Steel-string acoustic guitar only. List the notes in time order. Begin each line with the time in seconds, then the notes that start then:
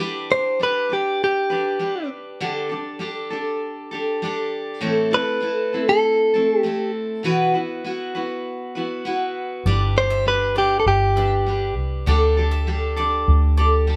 0.00 G3 D4 G4 B4
0.31 D4 G4
0.60 G3 D4 G4 B4
0.89 D4 G4 B4
1.50 D4 G4 B4
1.79 G3 D4 G4 B4
2.40 D3 G3 D4 G4 A4
2.69 D4 G4 A4
2.99 G3 D4 G4 A4
3.30 D4 G4 A4
3.91 D4 G4 A4
4.22 G3 D4 G4 A4
4.81 A2 E3 A3 C4 E4 A4
5.11 A3 C4 E4 A4
5.40 A3 C4 E4 A4
5.73 A3 C4 E4 A4
6.34 A3 C4 E4 A4
6.63 A3 C4 E4 A4
7.23 B2 E3 B3 E4 F#4 B4
7.54 B3 E4 F#4 B4
7.84 B3 E4 F#4 B4
8.15 B3 E4 F#4 B4
8.75 B3 E4 F#4 B4
9.05 B3 E4 F#4 B4
9.67 G3 D4 G4 B4
10.00 D4 G4
10.26 G3 D4 G4 B4
10.55 D4 G4 B4
11.16 D4 G4 B4
11.46 G3 D4 G4 B4
12.06 D3 G3 D4 G4 A4
12.37 D4 G4 A4
12.67 G3 D4 G4 A4
12.96 D4 G4 A4
13.58 D4 G4 A4
13.87 G3 D4 G4 A4